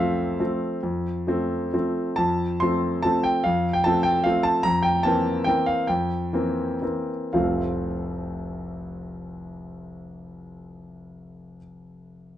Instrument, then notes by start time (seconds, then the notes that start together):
grand piano
Already playing: F2 F3 A3 C4 E5 F5
0.40 F3 A3 C4
0.83 F2
1.27 F3 A3 C4
1.73 F3 A3 C4
2.16 F2 A5
2.60 F3 A3 C4 C6
3.02 F3 A3 C4 A5
3.24 G5
3.44 F2 F5
3.73 G5
3.84 F3 A3 C4 A5
4.03 G5
4.24 F3 A3 C4 F5
4.43 A5
4.63 F2 A#5
4.83 G5
5.03 E3 A#3 C4 A5
5.44 E3 A#3 C4 G5
5.66 F5
5.87 F2 G5
6.33 E3 A#3 C4
6.82 E3 A#3 C4
7.33 F1 C2 F3 A3 C4 F4 F5